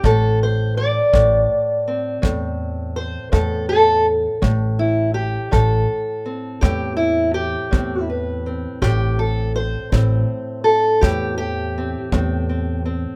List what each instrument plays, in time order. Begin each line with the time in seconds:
Already playing: steel-string acoustic guitar C4
0.04 upright bass A1, steel-string acoustic guitar A2 A4, kick
0.43 steel-string acoustic guitar C5
0.77 steel-string acoustic guitar D5
1.13 upright bass A1, steel-string acoustic guitar A2, kick
1.88 steel-string acoustic guitar C4
2.22 upright bass E2, steel-string acoustic guitar A2, kick
2.96 steel-string acoustic guitar C5
3.32 upright bass E2, steel-string acoustic guitar A2 A4, kick
3.69 steel-string acoustic guitar A4
4.42 upright bass A1, steel-string acoustic guitar A2, kick
4.79 steel-string acoustic guitar E4
5.14 steel-string acoustic guitar G4
5.51 upright bass A1, steel-string acoustic guitar A2 A4, kick
6.26 steel-string acoustic guitar C4
6.61 upright bass E2, steel-string acoustic guitar A2 G4, kick
6.97 steel-string acoustic guitar E4
7.34 steel-string acoustic guitar G4
7.71 upright bass E2, steel-string acoustic guitar A2 C4, kick
8.10 steel-string acoustic guitar B4
8.46 steel-string acoustic guitar C4
8.82 upright bass A1, steel-string acoustic guitar A2 G4, kick
9.19 steel-string acoustic guitar A4
9.56 steel-string acoustic guitar C5
9.92 upright bass A1, steel-string acoustic guitar A2 C4, kick
10.64 steel-string acoustic guitar A4
11.01 upright bass E2, steel-string acoustic guitar A2 G4, kick
11.38 steel-string acoustic guitar G4
11.78 steel-string acoustic guitar C4
12.12 upright bass E2, steel-string acoustic guitar A2 C4, kick
12.49 steel-string acoustic guitar C4
12.85 steel-string acoustic guitar C4